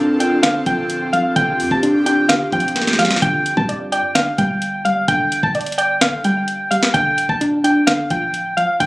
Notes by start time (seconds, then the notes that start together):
Already playing: D1 D3 C4 D4 F4 A4
0.20 D4 G5, closed hi-hat
0.43 D3 F5, snare, closed hi-hat
0.66 D1 F3 G5, kick, closed hi-hat
0.90 closed hi-hat
1.13 F3 F5, closed hi-hat
1.36 D1 D3 G4 G5, kick, closed hi-hat
1.59 F2, open hi-hat
1.71 D1 A5, kick
1.83 D4, closed hi-hat
2.06 D4 G5, closed hi-hat
2.29 D3 F5, snare, closed hi-hat
2.52 D1 F3 G5, kick, closed hi-hat
2.60 closed hi-hat
2.68 closed hi-hat
2.76 snare, closed hi-hat
2.82 snare
2.87 snare
2.93 snare
2.99 F3 F5, snare, closed hi-hat
3.05 snare
3.11 snare
3.16 snare
3.22 G1 D3 G5, kick, closed hi-hat
3.46 closed hi-hat
3.57 G2 A5, kick
3.69 D5, closed hi-hat
3.92 D5 G5, closed hi-hat
4.15 D3 F5, snare, closed hi-hat
4.38 G1 G3 G5, kick, closed hi-hat
4.62 closed hi-hat
4.85 G3 F5, closed hi-hat
5.08 G1 D3 G5, kick, closed hi-hat
5.32 closed hi-hat
5.43 G1 A5, kick
5.55 D5, closed hi-hat
5.61 closed hi-hat
5.66 closed hi-hat
5.72 closed hi-hat
5.78 D5 G5, closed hi-hat
6.01 A#1 D3 F5, snare, closed hi-hat
6.13 G1
6.24 G3 G5, closed hi-hat
6.48 closed hi-hat
6.71 G3 F5, closed hi-hat
6.83 snare
6.94 D1 D3 G5, kick, closed hi-hat
7.18 closed hi-hat
7.29 D1 A5, kick
7.41 D4, closed hi-hat
7.64 D4 G5, closed hi-hat
7.87 D3 F5, snare, closed hi-hat
8.10 D1 F3 G5, kick, closed hi-hat
8.34 closed hi-hat
8.57 F3 F5, closed hi-hat
8.80 D1 D3 G5, kick, closed hi-hat